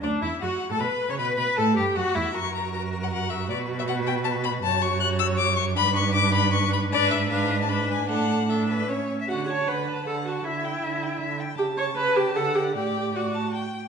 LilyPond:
<<
  \new Staff \with { instrumentName = "Violin" } { \time 3/4 \key b \minor \tempo 4 = 156 d''8 e''8 fis''8. a''16 b''8. cis'''16 | b''8 b''8 a''8 g''8 fis''8 e''8 | cis'''8 ais''8 ais''8. fis''16 fis''8 e''8 | d''8. e''16 fis''8 g''8 a''8 b''8 |
\key d \major a''8 cis'''8 fis'''8 e'''8 d'''8 cis'''8 | b''8 cis'''8 d'''8 b''8 cis'''8 b''8 | d''8 e''8 f''8. a''16 b''8 gis''8 | fis''4 e''4. r8 |
fis''8 cis'''8 b''4 a''8 fis''8 | e''2~ e''8 r8 | g''8 cis'''8 b''8 g''8 a''8 g''8 | g''4 fis''4 r4 | }
  \new Staff \with { instrumentName = "Violin" } { \time 3/4 \key b \minor d'8 e'8 fis'8. a'16 b'8. cis''16 | b'8 b'8 a'8 g'8 fis'8 e'8 | ais'2. | b'2. |
\key d \major cis''2. | b'2. | b'4 b'4 b'4 | a'4 a'8 b'8 cis''8. e''16 |
fis''8 a''8 fis''8 a''8 fis''8 a''8 | e''8 g''8 e''8 g''8 e''8 g''8 | a''2 fis''4 | d''4 d''8 a''8 g''4 | }
  \new Staff \with { instrumentName = "Viola" } { \time 3/4 \key b \minor d'8 e'8 fis'8. a'16 b'8. cis''16 | b'8 b'8 a'8 g'8 fis'8 e'8 | fis'2.~ | fis'2. |
\key d \major fis'2. | d'2. | d'4 d'4 d'4 | d'4 d'4 cis'8 r8 |
fis'8 cis''8 b'4 a'8 fis'8 | e'2~ e'8 r8 | g'8 cis''8 b'8 g'8 a'8 g'8 | g'4 fis'4 r4 | }
  \new Staff \with { instrumentName = "Cello" } { \clef bass \time 3/4 \key b \minor d,8 e,8 fis,8. a,16 b,8. cis16 | b,8 b,8 a,8 g,8 fis,8 e,8 | fis,2. | b,2. |
\key d \major fis,2. | g,2. | gis,2. | a,2~ a,8 r8 |
d4 d4 d4 | d4 d4 d4 | cis2 d4 | a,2~ a,8 r8 | }
>>